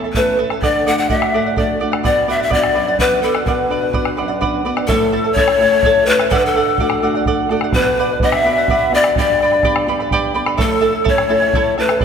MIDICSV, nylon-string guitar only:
0, 0, Header, 1, 2, 480
1, 0, Start_track
1, 0, Tempo, 474308
1, 635, Time_signature, 6, 3, 24, 8
1, 12194, End_track
2, 0, Start_track
2, 0, Title_t, "Nylon-string guitar"
2, 0, Program_c, 0, 24
2, 0, Note_on_c, 0, 40, 68
2, 162, Note_on_c, 0, 57, 50
2, 163, Note_on_c, 0, 61, 45
2, 167, Note_on_c, 0, 64, 59
2, 381, Note_off_c, 0, 57, 0
2, 384, Note_off_c, 0, 40, 0
2, 389, Note_off_c, 0, 61, 0
2, 389, Note_off_c, 0, 64, 0
2, 393, Note_on_c, 0, 57, 49
2, 400, Note_on_c, 0, 61, 46
2, 404, Note_on_c, 0, 64, 59
2, 586, Note_off_c, 0, 57, 0
2, 591, Note_off_c, 0, 61, 0
2, 591, Note_off_c, 0, 64, 0
2, 636, Note_on_c, 0, 50, 70
2, 873, Note_on_c, 0, 57, 49
2, 879, Note_on_c, 0, 62, 45
2, 886, Note_on_c, 0, 66, 54
2, 1100, Note_off_c, 0, 50, 0
2, 1101, Note_off_c, 0, 57, 0
2, 1102, Note_off_c, 0, 62, 0
2, 1107, Note_off_c, 0, 66, 0
2, 1112, Note_on_c, 0, 57, 51
2, 1118, Note_on_c, 0, 62, 47
2, 1119, Note_on_c, 0, 66, 57
2, 1355, Note_on_c, 0, 45, 70
2, 1497, Note_off_c, 0, 57, 0
2, 1498, Note_off_c, 0, 62, 0
2, 1500, Note_off_c, 0, 66, 0
2, 1594, Note_on_c, 0, 57, 47
2, 1600, Note_on_c, 0, 62, 45
2, 1600, Note_on_c, 0, 66, 56
2, 1819, Note_off_c, 0, 45, 0
2, 1822, Note_off_c, 0, 57, 0
2, 1822, Note_off_c, 0, 62, 0
2, 1827, Note_off_c, 0, 66, 0
2, 1833, Note_on_c, 0, 57, 46
2, 1838, Note_on_c, 0, 62, 42
2, 1839, Note_on_c, 0, 66, 51
2, 2025, Note_off_c, 0, 57, 0
2, 2026, Note_off_c, 0, 62, 0
2, 2028, Note_off_c, 0, 66, 0
2, 2067, Note_on_c, 0, 47, 73
2, 2298, Note_on_c, 0, 59, 50
2, 2304, Note_on_c, 0, 62, 42
2, 2307, Note_on_c, 0, 66, 49
2, 2535, Note_off_c, 0, 47, 0
2, 2541, Note_off_c, 0, 59, 0
2, 2549, Note_off_c, 0, 62, 0
2, 2552, Note_off_c, 0, 66, 0
2, 2553, Note_on_c, 0, 59, 50
2, 2560, Note_on_c, 0, 62, 44
2, 2566, Note_on_c, 0, 66, 55
2, 2786, Note_on_c, 0, 42, 74
2, 2936, Note_off_c, 0, 59, 0
2, 2941, Note_off_c, 0, 62, 0
2, 2943, Note_off_c, 0, 66, 0
2, 3016, Note_on_c, 0, 59, 46
2, 3021, Note_on_c, 0, 62, 43
2, 3031, Note_on_c, 0, 66, 58
2, 3243, Note_off_c, 0, 59, 0
2, 3247, Note_off_c, 0, 62, 0
2, 3249, Note_off_c, 0, 66, 0
2, 3254, Note_off_c, 0, 42, 0
2, 3255, Note_on_c, 0, 59, 51
2, 3258, Note_on_c, 0, 62, 43
2, 3264, Note_on_c, 0, 66, 55
2, 3453, Note_off_c, 0, 59, 0
2, 3456, Note_off_c, 0, 62, 0
2, 3457, Note_off_c, 0, 66, 0
2, 3490, Note_on_c, 0, 47, 68
2, 3727, Note_on_c, 0, 59, 47
2, 3732, Note_on_c, 0, 62, 44
2, 3733, Note_on_c, 0, 66, 52
2, 3960, Note_off_c, 0, 59, 0
2, 3965, Note_off_c, 0, 62, 0
2, 3965, Note_off_c, 0, 66, 0
2, 3966, Note_off_c, 0, 47, 0
2, 3972, Note_on_c, 0, 59, 47
2, 3977, Note_on_c, 0, 62, 42
2, 3979, Note_on_c, 0, 66, 58
2, 4223, Note_on_c, 0, 42, 65
2, 4363, Note_off_c, 0, 59, 0
2, 4366, Note_off_c, 0, 62, 0
2, 4366, Note_off_c, 0, 66, 0
2, 4461, Note_on_c, 0, 62, 43
2, 4463, Note_on_c, 0, 59, 51
2, 4465, Note_on_c, 0, 78, 65
2, 4466, Note_on_c, 0, 66, 55
2, 4689, Note_off_c, 0, 78, 0
2, 4692, Note_off_c, 0, 42, 0
2, 4695, Note_off_c, 0, 59, 0
2, 4695, Note_off_c, 0, 62, 0
2, 4699, Note_off_c, 0, 66, 0
2, 4706, Note_on_c, 0, 59, 48
2, 4709, Note_on_c, 0, 62, 44
2, 4710, Note_on_c, 0, 71, 64
2, 4711, Note_on_c, 0, 66, 56
2, 4900, Note_off_c, 0, 59, 0
2, 4901, Note_off_c, 0, 62, 0
2, 4903, Note_off_c, 0, 66, 0
2, 4931, Note_off_c, 0, 71, 0
2, 4953, Note_on_c, 0, 45, 76
2, 5412, Note_on_c, 0, 57, 50
2, 5417, Note_on_c, 0, 61, 45
2, 5427, Note_on_c, 0, 64, 61
2, 5640, Note_off_c, 0, 57, 0
2, 5648, Note_off_c, 0, 61, 0
2, 5652, Note_off_c, 0, 64, 0
2, 5652, Note_on_c, 0, 57, 60
2, 5660, Note_on_c, 0, 61, 53
2, 5665, Note_on_c, 0, 64, 60
2, 6126, Note_off_c, 0, 57, 0
2, 6130, Note_off_c, 0, 61, 0
2, 6132, Note_off_c, 0, 64, 0
2, 6138, Note_on_c, 0, 57, 51
2, 6143, Note_on_c, 0, 61, 45
2, 6150, Note_on_c, 0, 64, 56
2, 6350, Note_off_c, 0, 45, 0
2, 6376, Note_off_c, 0, 57, 0
2, 6380, Note_off_c, 0, 61, 0
2, 6380, Note_off_c, 0, 64, 0
2, 6385, Note_on_c, 0, 50, 76
2, 6868, Note_on_c, 0, 57, 54
2, 6873, Note_on_c, 0, 62, 51
2, 6880, Note_on_c, 0, 66, 61
2, 7097, Note_off_c, 0, 57, 0
2, 7098, Note_off_c, 0, 62, 0
2, 7105, Note_off_c, 0, 66, 0
2, 7108, Note_on_c, 0, 57, 56
2, 7112, Note_on_c, 0, 62, 49
2, 7118, Note_on_c, 0, 66, 62
2, 7574, Note_off_c, 0, 57, 0
2, 7575, Note_off_c, 0, 62, 0
2, 7579, Note_off_c, 0, 66, 0
2, 7586, Note_on_c, 0, 57, 57
2, 7591, Note_on_c, 0, 66, 58
2, 7592, Note_on_c, 0, 62, 48
2, 7786, Note_off_c, 0, 50, 0
2, 7821, Note_off_c, 0, 57, 0
2, 7822, Note_off_c, 0, 62, 0
2, 7823, Note_off_c, 0, 66, 0
2, 7831, Note_on_c, 0, 47, 78
2, 8314, Note_on_c, 0, 59, 51
2, 8319, Note_on_c, 0, 62, 49
2, 8324, Note_on_c, 0, 66, 62
2, 8530, Note_off_c, 0, 59, 0
2, 8531, Note_off_c, 0, 62, 0
2, 8536, Note_off_c, 0, 66, 0
2, 8541, Note_on_c, 0, 59, 61
2, 8545, Note_on_c, 0, 62, 50
2, 8548, Note_on_c, 0, 66, 62
2, 9011, Note_off_c, 0, 59, 0
2, 9012, Note_off_c, 0, 62, 0
2, 9015, Note_off_c, 0, 66, 0
2, 9023, Note_on_c, 0, 59, 54
2, 9027, Note_on_c, 0, 62, 50
2, 9028, Note_on_c, 0, 66, 64
2, 9231, Note_off_c, 0, 47, 0
2, 9260, Note_off_c, 0, 59, 0
2, 9261, Note_off_c, 0, 62, 0
2, 9262, Note_off_c, 0, 66, 0
2, 9278, Note_on_c, 0, 43, 80
2, 9747, Note_on_c, 0, 59, 56
2, 9750, Note_on_c, 0, 62, 45
2, 9756, Note_on_c, 0, 67, 58
2, 9968, Note_off_c, 0, 59, 0
2, 9970, Note_off_c, 0, 62, 0
2, 9977, Note_off_c, 0, 67, 0
2, 9979, Note_on_c, 0, 59, 53
2, 9985, Note_on_c, 0, 62, 51
2, 9989, Note_on_c, 0, 67, 63
2, 10452, Note_off_c, 0, 59, 0
2, 10453, Note_off_c, 0, 62, 0
2, 10456, Note_off_c, 0, 67, 0
2, 10468, Note_on_c, 0, 59, 49
2, 10473, Note_on_c, 0, 62, 46
2, 10475, Note_on_c, 0, 67, 59
2, 10676, Note_off_c, 0, 43, 0
2, 10699, Note_on_c, 0, 45, 74
2, 10703, Note_off_c, 0, 59, 0
2, 10705, Note_off_c, 0, 67, 0
2, 10707, Note_off_c, 0, 62, 0
2, 11181, Note_on_c, 0, 57, 48
2, 11190, Note_on_c, 0, 64, 62
2, 11192, Note_on_c, 0, 61, 47
2, 11414, Note_off_c, 0, 57, 0
2, 11419, Note_off_c, 0, 61, 0
2, 11422, Note_off_c, 0, 64, 0
2, 11426, Note_on_c, 0, 57, 50
2, 11430, Note_on_c, 0, 61, 47
2, 11435, Note_on_c, 0, 64, 61
2, 11896, Note_off_c, 0, 57, 0
2, 11899, Note_off_c, 0, 61, 0
2, 11900, Note_off_c, 0, 64, 0
2, 11916, Note_on_c, 0, 57, 51
2, 11920, Note_on_c, 0, 61, 48
2, 11924, Note_on_c, 0, 64, 60
2, 12108, Note_off_c, 0, 45, 0
2, 12149, Note_off_c, 0, 64, 0
2, 12150, Note_off_c, 0, 57, 0
2, 12150, Note_off_c, 0, 61, 0
2, 12161, Note_on_c, 0, 50, 74
2, 12194, Note_off_c, 0, 50, 0
2, 12194, End_track
0, 0, End_of_file